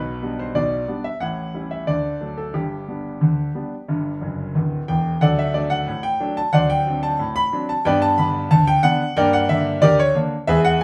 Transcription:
Already playing: B1 B2 B4
0.22 G3 B3 D4
0.39 C5
0.55 B1 B2 D5
0.88 G3 B3 D4
1.04 E5
1.20 A1 A2 F#5
1.54 G3 C#4 E4
1.71 E5
1.87 D2 D3 D5
2.21 F#3 A3 D4
2.38 A4
2.54 G1 G2 G4
2.88 G3 B3 D4
3.21 D2 D3
3.55 G3 B3 D4
3.88 G1 G2
4.21 F#1 F#2
4.55 D1 D2
4.88 E1 E2 G5
5.21 D2 F#3 A4 D5 F#5
5.39 E5
5.54 F#3 A3 D4 D5
5.70 F#5
5.87 A2
6.03 G5
6.20 F#3 A3 D4
6.37 A5
6.53 D2 F#3 C5 D5 F#5
6.70 G5
6.87 F#3 C4 D4
7.03 A5
7.19 A2
7.36 B5
7.52 F#3 C4 D4
7.69 A5
7.85 G2 B3 B4 D5 G5
8.02 A5
8.18 D3 B3 D4 B5
8.51 D2 A5
8.67 G5
8.83 D3 B3 D4 F#5
9.17 G2 A#3 A#4 D5 G5
9.33 F#5
9.49 D3 A#3 D4 E5
9.82 D2 G4 A#4 D5
9.99 C#5
10.15 D3 A#3 D4
10.47 E2 G#3 G#4 B4 E5
10.65 F#5

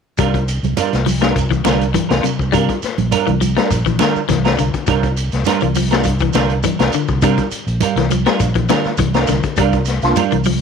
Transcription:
0.18 C2 G3 D4 F4 A#4, kick, closed hi-hat, shekere
0.34 kick, closed hi-hat, shekere
0.48 closed hi-hat, shekere
0.63 C2, closed hi-hat, high conga, shekere
0.77 G3 D4 F4 A#4, closed hi-hat, high conga, shekere
0.93 C2, snare, closed hi-hat, shekere
1.06 F3, open hi-hat, high conga, shekere
1.21 G3 D4 F4 A#4, snare, closed hi-hat, shekere
1.36 C2, kick, closed hi-hat, shekere
1.51 E3, kick, closed hi-hat, shekere
1.64 C2 D3 G3 D4 F4 A#4, snare, closed hi-hat, high conga, shekere
1.81 closed hi-hat, shekere
1.94 E3, kick, closed hi-hat, high conga, shekere
2.09 C2 D4 F4 A#4, snare, closed hi-hat, shekere
2.23 C3, closed hi-hat, high conga, shekere
2.39 C2, kick, shekere
2.52 C3 G3 D4 F4 A#4, muted clean electric guitar stroke, kick, closed hi-hat, shekere
2.69 kick, closed hi-hat, shekere
2.82 muted fingered electric bass stroke, snare, closed hi-hat, shekere
2.98 A#1, closed hi-hat, high conga, shekere
3.11 G3 D4 F4 A#4, closed hi-hat, high conga, shekere
3.27 C2 E3, closed hi-hat, high conga, shekere
3.41 F3, closed hi-hat, high conga, shekere
3.57 G3 D4 F4 A#4, snare, closed hi-hat, shekere
3.71 A#1, kick, closed hi-hat, shekere
3.86 E3, kick, closed hi-hat, shekere
3.99 D3 G3 D4 F4 A#4, snare, closed hi-hat, high conga, shekere
4.16 muted fingered electric bass stroke, shekere
4.29 C2 E3, kick, snare, closed hi-hat, high conga, shekere
4.45 D4 F4 A#4, snare, closed hi-hat, shekere
4.58 C2 D3, closed hi-hat, shekere
4.74 kick, closed hi-hat, shekere
4.87 C2 G3 D4 F4 A#4, muted clean electric guitar stroke, kick, closed hi-hat, shekere
5.03 kick, closed hi-hat, shekere
5.17 closed hi-hat, shekere
5.32 C2, snare, closed hi-hat, shekere
5.45 G3 D4 F4 A#4, muted fingered electric bass stroke, snare, closed hi-hat, high conga, shekere
5.60 C2 E3, closed hi-hat, shekere
5.75 F3, open hi-hat, high conga, shekere
5.90 G3 D4 F4 A#4, snare, closed hi-hat, shekere
6.04 C2, kick, closed hi-hat, shekere
6.19 E3, kick, closed hi-hat, shekere
6.33 C2 D3 G3 D4 F4 A#4, snare, closed hi-hat, high conga, shekere
6.49 closed hi-hat, shekere
6.63 E3, kick, closed hi-hat, high conga, shekere
6.79 C2 D4 F4 A#4, snare, closed hi-hat, shekere
6.92 D3, muted fingered electric bass stroke, closed hi-hat, shekere
7.08 C2, kick, shekere
7.22 C3 G3 D4 F4 A#4, kick, closed hi-hat, shekere
7.37 kick, closed hi-hat, shekere
7.51 muted fingered electric bass stroke, closed hi-hat, shekere
7.67 A#1, closed hi-hat, shekere
7.81 G3 F4 A#4, muted clean electric guitar stroke, closed hi-hat, high conga, shekere
7.96 C2 E3, snare, closed hi-hat, shekere
8.10 F3, closed hi-hat, high conga, shekere
8.26 G3 D4 F4 A#4, snare, closed hi-hat, shekere
8.40 A#1, kick, closed hi-hat, shekere
8.55 E3, kick, closed hi-hat, shekere
8.69 D3 G3 D4 F4 A#4, snare, closed hi-hat, high conga, shekere
8.84 muted fingered electric bass stroke, snare, shekere
8.97 C2 E3, kick, closed hi-hat, high conga, shekere
9.14 D4 F4 A#4, snare, closed hi-hat, shekere
9.27 C2 D3, snare, closed hi-hat, high conga, shekere
9.43 kick, closed hi-hat, shekere
9.56 C2 G3 D4 F4 A#4, kick, closed hi-hat, shekere
9.73 kick, closed hi-hat, shekere
9.85 snare, closed hi-hat, shekere
10.02 C2 A#3 D4 F4, snare, closed hi-hat, shekere
10.16 G3 D4 F4 A#4, closed hi-hat, high conga, shekere
10.31 C2 E3, closed hi-hat, shekere
10.44 F3, open hi-hat, high conga, shekere

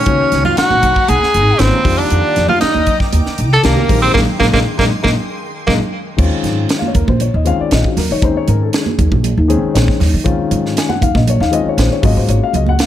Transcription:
Already playing: C#4 C#5
0.05 C#2 D#3 A#3 B3 C#4 F#4 F#5 A#5 B5, kick, closed hi-hat
0.32 C#2, snare, closed hi-hat
0.45 F4 F5, high conga, low conga
0.57 F#4 F#5, muted upright bass stroke, snare, closed hi-hat
0.71 B1, high conga
0.83 kick, closed hi-hat, low conga
0.96 kick
1.08 B1 G#4 G#5, closed hi-hat, high conga
1.23 muted upright bass stroke, snare
1.34 G#1, closed hi-hat
1.59 G#1 D#3 A#3 B3 C4 C#4 F4 C5, snare, closed hi-hat
1.72 high conga
1.84 F2 D#3 G3 A#3 D4 F4 G5 D6, kick, snare, open hi-hat, low conga
1.98 D4 D5
2.10 F2, closed hi-hat
2.36 F2, snare, closed hi-hat
2.49 F4 F5, high conga, low conga
2.60 D#4 D#5, muted upright bass stroke, snare, closed hi-hat
2.74 D#2, high conga
2.87 kick, closed hi-hat, low conga
3.00 kick, snare
3.13 D#2, closed hi-hat, high conga
3.26 snare
3.38 C2, closed hi-hat
3.53 A4 A5
3.63 C2 D#3 G3 A#3 D4 G4 A#4, snare, closed hi-hat
3.77 high conga
3.89 A#1 D#3 G#3 A#3 C4 G4 G#4 C6, kick, open hi-hat, low conga
4.02 C4 C5
4.14 A#1 G#3 A#3 D#4 G#4 A#4 D#5, kick, snare, low conga
4.39 A#1 G#3 A#3 D#4 G#4 A#4 D#5, kick, snare, low conga
4.53 A#1 G#3 A#3 D#4 G#4 A#4 D#5, kick, snare, low conga
4.77 A#1 G#3 A#3 D#4 A#4 D#5, kick, snare, low conga
4.82 G#4
5.03 A#1 G#3 A#3 D#4 G#4 A#4 D#5, kick, snare, low conga
5.67 A#1 G#3 A#3 D#4 G#4 A#4 D#5, kick, snare, low conga
6.17 D#2 D#3 G#3 C4 C#4 F4, kick, crash
6.43 G#2, snare, closed hi-hat, low conga
6.69 snare, closed hi-hat
6.79 F5, high conga
6.88 C#5
6.95 D#2 A#4, kick, closed hi-hat, high conga, low conga
7.08 A#1 C5, kick, high conga
7.20 C#5, closed hi-hat, low conga
7.34 D#2 D#5
7.45 D#3 G#3 C4 C#4 F4 F5, closed hi-hat
7.60 D5, muted upright bass stroke
7.71 A#1 D#5, snare, closed hi-hat
7.84 F#4, kick
7.97 D#2 A#4, snare, open hi-hat, low conga
8.11 D#3 C#5
8.21 D#2 D#3 G#3 C4 C#4 D#4 C5, kick, closed hi-hat
8.37 C#5
8.48 G#2 A#4, closed hi-hat, low conga
8.63 A4
8.73 G#4, snare, closed hi-hat
8.86 high conga
8.99 D#2, kick, closed hi-hat, high conga, low conga
9.12 A#1, kick, high conga
9.24 closed hi-hat, low conga
9.38 D#2
9.48 D#3 G#3 C4 C#4 G#4, closed hi-hat
9.63 muted upright bass stroke
9.74 A#1 C#5, snare, closed hi-hat
9.88 kick, snare
10.00 D#2, snare, open hi-hat, low conga
10.14 D#3
10.24 D#2 D#3 G#3 C4 C#4 F4, kick, closed hi-hat
10.51 G#2, closed hi-hat, low conga
10.66 snare
10.77 G#5, snare, closed hi-hat
10.89 F#5, high conga
11.01 D#2 F5, kick, closed hi-hat, high conga, low conga
11.15 A#1 D#5, kick, snare, high conga
11.27 C#5, closed hi-hat, low conga
11.40 D#2 F5, snare
11.51 D#3 G#3 C4 C#4 F4 D#5, closed hi-hat
11.66 C#5, muted upright bass stroke
11.78 A#1 C5, snare, closed hi-hat
11.93 C#5
12.02 G#1 G#3 A#3 C#4 F4 F#4 D#5, kick, open hi-hat, low conga
12.17 G#2 C5
12.28 G#1 C#5, closed hi-hat
12.44 F5
12.53 C#2 D#5, closed hi-hat, low conga
12.66 F#5, high conga
12.79 F5, snare, closed hi-hat

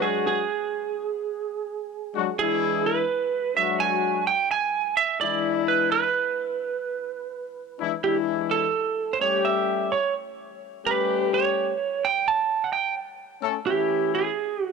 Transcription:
Already playing: F#3 G#3 D4 F#4
0.02 G#4
0.27 G#4
2.14 F#3 G#3 D4 F#4
2.39 E3 G#3 D4 E4 G#4
2.86 B4
3.55 F#3 G#3 D4 F#4 E5
3.80 G#5
4.27 G5
4.51 G#5
4.97 E5
5.21 E3 G#3 D4 E4 D5
5.68 B4
5.92 B4
7.79 E3 G#3 D4 E4
8.03 E3 G#3 D4 E4 G4
8.51 A4
9.13 C5
9.20 G3 A3 C#4 G4 C#5
9.45 E5
9.92 C#5
10.84 G3 A3 C#4 G4 B4
11.34 C#5
12.05 G5
12.28 A5
12.64 F#5
12.73 G5
13.42 A3 C#4 A4
13.66 E3 A3 C#4 E4 G4
14.15 G#4
14.64 F#4

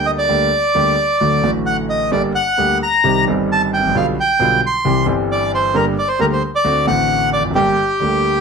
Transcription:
Already playing: D2 D3 G3 A#3 D4 A4
0.06 D#5
0.18 D5
0.29 D2 D3 G3 A#3 G4
0.75 D2 D3 G3 A#3 G4
1.21 D2 D3 F#3 A3 F#4
1.42 A1 A2 D3 F#3 A3
1.46 F#4
1.66 F#5
1.89 D#5
2.11 G1 G2 D3 G3 A#3 G4 D5
2.35 F#5
2.58 D2 D3 G3 A#3 G4
2.83 A#5
3.04 C2 C3 D#3 G3 C4 G4
3.26 G1 G2 D#3 G3 C4 G4
3.52 A5
3.74 G5
3.79 G#1
3.84 A1
3.89 A#1
3.95 B1 B2 D3 G3 B3 F4 F5
4.20 G5
4.39 B1 B2 D3 G3 B3 F4
4.66 C6
4.85 C2 C3 E3 G3 C4 G4
5.04 G1 G2 E3 G3 C4
5.09 G4
5.32 D5
5.54 C5
5.74 G1 G2 D3 G3 A#3 G4 A#4
5.99 D5
6.08 C5
6.19 D2 D3 G3 A#3 G4 A#4
6.33 C5
6.55 D5
6.64 D2 D3 A3 C4 F#4
6.85 A1 A2 D3 A3 C4 F#5
6.90 F#4
7.33 D5
7.40 E2
7.44 F2
7.51 F#2
7.55 G1 G2 D3 G3 A#3 G4
8.00 D2 D3 G3 A#3
8.04 G4

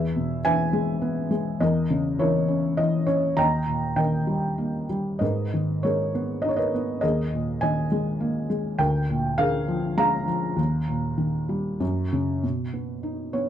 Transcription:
Already playing: E2 G#4 B4 E5
0.16 B2
0.45 E3 B4 E5 G#5
0.73 G#3
1.02 B3
1.31 G#3
1.60 E2 A#4 D#5
1.90 C#3
2.19 E3 E4 A#4 C#5
2.48 C#4
2.77 E3 D#5
3.06 C#4 C#5
3.37 D#2 D#5 G5 A#5
3.66 A#2
3.96 D#3 A#4 D#5 G5
4.27 G3
4.58 A#3
4.89 G3
5.19 G#2 A#4 B4 D#5
5.54 D#3
5.83 G#3 A#4 C#5
6.15 B3
6.42 D#4 D#5
6.49 C#5
6.57 A#4 B4 D#5
6.75 B3
7.01 D#2 G#4 A#4 D#5
7.33 A#2
7.61 D#3 D#5 G#5
7.92 G#3
8.20 A#3
8.50 G#3
8.79 D2 A#4 G5
9.09 A#2
9.38 D3 G#4 A#4 F5
9.68 F3
9.97 G#3 F5 A#5
10.28 F3
10.56 D#2
10.88 A#2
11.18 D#3
11.49 G3
11.80 F#2
12.13 C#3
12.43 B2
12.73 B3
13.03 D#4
13.33 B3 C#5

